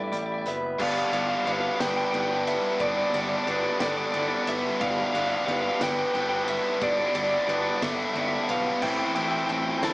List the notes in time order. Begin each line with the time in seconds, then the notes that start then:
Already playing: G2 A2 E3 G3 B3 E4 A4 B4
0.04 D5 E5
0.12 A1 G3 D5 E5, closed hi-hat
0.18 D5
0.23 D5 E5
0.32 D5 E5
0.38 D5 E5
0.46 F#1 B3 B4 E5, closed hi-hat
0.79 G1 G2 D3 G3 B3 D4 G4 B4 D5 F5 A5, kick, crash
0.91 F5
0.98 F5
1.05 F5
1.13 G1 G3 B3 D4 G4 F5, ride
1.21 F5
1.29 F5
1.37 F5
1.46 G1 D3 G3 B3 D4 G4 B4 F5, ride
1.53 F5
1.60 F5
1.68 F5
1.76 G4 B4 F5
1.80 G1 G2 D3 G3 B3 D4 G5, snare, ride
1.89 G5
1.96 G5
2.05 G5
2.11 G1 D3 G3 B3 D4 G5, ride
2.15 G4
2.20 G5
2.28 G5
2.35 G5
2.46 B4 E5, ride
2.80 G1 G2 D3 G3 B3 D4 G4 D5, kick, ride
2.88 D5
2.97 D5
3.04 D5
3.14 G1 G3 B3 D4 G4 D5, ride
3.21 D5
3.29 D5
3.37 D5
3.44 G1 G3 D5, ride
3.48 D3 B3 D4 G4 B4 D5
3.62 D5
3.69 D5
3.80 G1 G2 D3 G3 B3 D4 G4 A4 D5, snare, ride
3.89 D5
3.97 D5
4.05 D5
4.12 G1 D3 G3 B3 D4 D5, ride
4.16 G4 D5
4.28 D5
4.34 D5
4.43 D5, ride
4.47 G1 B4 E5
4.80 G1 G2 D3 G3 B3 D4 G4 D5 F5, kick, ride
4.89 F5
4.98 F5
5.06 F5
5.13 G1 B3 D4 G4 F5, ride
5.17 G3 F5
5.30 F5
5.36 F5
5.45 G1 D3 G3 B3 D4 B4 F5, ride
5.50 G4 F5
5.61 F5
5.69 F5
5.76 D4 G4 F5
5.81 G1 G2 D3 G3 B3 B4 G5, snare, ride
5.90 G5
5.98 G5
6.07 G5
6.14 G1 D3 G3 B3 D4 G4 G5, ride
6.22 G5
6.29 G5
6.36 G5
6.44 G5, ride
6.48 B4 E5
6.81 G1 G2 D3 G3 B3 D4 G4 D5, kick, ride
6.91 D5
6.99 D5
7.06 D5
7.14 G1 G3 B3 D4 G4 D5, ride
7.23 D5
7.30 D5
7.39 D5
7.47 G1 D3 G3 B3 D4 B4 D5, ride
7.51 G4 D5
7.62 D5
7.70 D5
7.78 G4 D5
7.82 G1 G2 D3 G3 B3 D4 A4 E5, kick, snare, ride
7.91 E5
7.97 E5
8.05 E5
8.13 G1 D3 G3 B3 D4 E5, ride
8.18 G4 E5
8.28 E5
8.36 E5
8.44 E5
8.49 B1 B4 F5, ride
8.81 A1 A2 E3 A3 C4 E4 C5 E5 G5, kick, crash
8.90 G5
8.98 G5
9.06 G5
9.15 A1 A3 C4 E4 G5, ride
9.23 G5
9.31 G5
9.38 G5
9.46 A1 E3 A3 C4 C5 G5, ride
9.51 E4 G5
9.62 G5
9.71 G5
9.78 G5
9.82 A1 A2 E3 A3 C4 E4 C5 A5, snare, ride